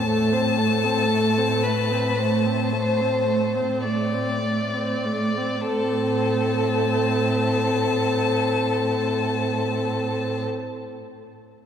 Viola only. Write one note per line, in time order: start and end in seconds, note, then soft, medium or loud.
0.07 0.34 A3 soft
0.33 0.60 C4 soft
0.58 0.86 A3 soft
0.84 1.10 C4 soft
1.10 1.39 A3 soft
1.37 1.65 C4 soft
1.64 1.93 A3 soft
1.91 2.17 C4 soft
2.18 2.47 A3 soft
2.46 2.74 C4 soft
2.72 3.02 A3 soft
3.00 3.27 C4 soft
3.28 3.57 A3 soft
3.55 3.86 C4 soft
3.85 4.15 A3 soft
4.14 4.42 C4 soft
4.43 4.75 A3 soft
4.73 5.07 C4 soft
5.05 5.39 A3 soft
5.37 5.66 C4 soft
5.67 10.42 C4 soft